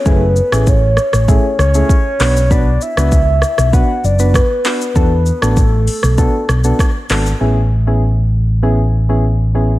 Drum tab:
HH |--------------o-|--------------o-|------o-------o-|----------------|
SH |x-xxx-xxx-xxx-xx|x-xxx-xxx-xxx-xx|x-xxx-xxx-xxx-xx|----------------|
CP |--------------x-|--------------x-|--------------x-|----------------|
SD |---r--rr--r---r-|---r--rr----r---|---r---r--r-r-r-|----------------|
BD |o---o---o---o---|o---o---o---o---|o---o---o---o---|----------------|